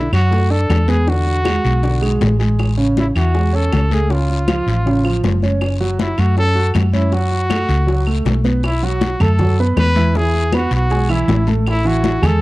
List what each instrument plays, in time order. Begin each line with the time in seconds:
Already playing: trumpet E4
0.12 fingered electric bass F#2, grand piano F#3 F#4, trumpet F#4, high conga, short guiro, claves
0.31 grand piano A3 A4, high bongo, high conga, long guiro
0.50 grand piano D4 D5, trumpet A4, high conga
0.69 fingered electric bass E2, high bongo, low bongo, high conga, short guiro, claves
0.88 grand piano B3 B4, trumpet G#4, high conga, short guiro
1.07 grand piano D3 D4, trumpet F#4, high bongo, high conga, long guiro
1.26 high bongo, high conga
1.44 grand piano G#3 G#4, high bongo, high conga, short guiro, claves
1.65 fingered electric bass B1, high bongo, high conga, short guiro
1.83 grand piano D3 D4, high bongo, high conga, long guiro
2.02 grand piano G#3 G#4, high conga, claves
2.21 fingered electric bass A1, high bongo, low bongo, high conga, short guiro
2.39 grand piano G#3 G#4, high bongo, short guiro
2.59 high bongo, high conga, long guiro, claves
2.77 grand piano C#3 C#4, high conga
2.97 trumpet E4, high bongo, high conga, short guiro
3.16 fingered electric bass E2, grand piano E3 E4, trumpet F#4, high conga, short guiro, claves
3.34 grand piano G#3 G#4, high bongo, high conga, long guiro
3.53 grand piano C#4 C#5, trumpet A4, high conga
3.72 fingered electric bass C#2, high bongo, low bongo, high conga, short guiro, claves
3.90 grand piano A3 A4, trumpet G#4, high conga, short guiro
4.10 grand piano C#3 C#4, trumpet F4, high bongo, high conga, long guiro
4.29 high bongo, high conga
4.48 grand piano F3 F4, high bongo, high conga, short guiro, claves
4.66 fingered electric bass A1, high bongo, high conga, short guiro
4.86 grand piano C#3 C#4, high bongo, high conga, long guiro
5.04 grand piano F3 F4, high conga, claves
5.23 fingered electric bass F#1, high bongo, low bongo, high conga, short guiro
5.42 grand piano C#4 C#5, high bongo, high conga, short guiro
5.61 high bongo, high conga, long guiro, claves
5.80 grand piano F#3 F#4, high conga
5.99 trumpet E4, high bongo, high conga, short guiro
6.18 fingered electric bass F#2, grand piano A3 A4, trumpet F#4, high conga, short guiro, claves
6.36 grand piano C#4 C#5, trumpet A4, high bongo, high conga, long guiro
6.55 grand piano F#4 F#5, high conga
6.74 fingered electric bass F#2, high bongo, low bongo, high conga, short guiro, claves
6.93 grand piano C#4 C#5, trumpet E4, high conga, short guiro
7.12 grand piano F#3 F#4, trumpet F#4, high bongo, high conga, long guiro
7.31 high bongo, high conga
7.49 grand piano A3 A4, high bongo, high conga, short guiro, claves
7.69 fingered electric bass C#2, high bongo, high conga, short guiro
7.87 grand piano F#3 F#4, high bongo, high conga, long guiro
8.07 grand piano A3 A4, high conga, claves
8.25 fingered electric bass B1, high bongo, low bongo, high conga, short guiro
8.44 grand piano B3 B4, high bongo, high conga, short guiro
8.63 trumpet E4, high bongo, high conga, long guiro, claves
8.83 grand piano F#3 F#4 F#5, trumpet F#4, high conga
9.01 high bongo, high conga, short guiro
9.20 fingered electric bass F#2, grand piano A3 A4 A5, trumpet A4, high conga, low conga, short guiro, claves
9.39 grand piano F#3 F#4 F#5, high bongo, high conga, low conga, long guiro
9.58 grand piano B3 B4 B5, high conga
9.76 fingered electric bass E2, trumpet B4, high bongo, low bongo, high conga, short guiro, claves
9.95 grand piano E3 E4 E5, high conga, short guiro
10.15 grand piano E3 E4 E5, trumpet G#4, high bongo, high conga, long guiro
10.34 high bongo, high conga
10.52 grand piano B3 B4 B5, trumpet F#4, high bongo, high conga, short guiro, claves
10.71 fingered electric bass B1, trumpet F#4, high bongo, high conga, short guiro
10.90 grand piano G#3 G#4 G#5, high bongo, high conga, long guiro
11.09 grand piano E3 E4 E5, trumpet E4, high conga, claves
11.28 fingered electric bass A1, high bongo, low bongo, high conga, short guiro
11.47 grand piano A3 A4 A5, high bongo, high conga, short guiro
11.67 trumpet E4, high bongo, high conga, long guiro, claves
11.85 grand piano E3 E4 E5, trumpet F#4, high conga
12.04 high bongo, high conga, short guiro
12.22 fingered electric bass E2, grand piano G#3 G#4 G#5, trumpet A4, high conga, low conga, short guiro, claves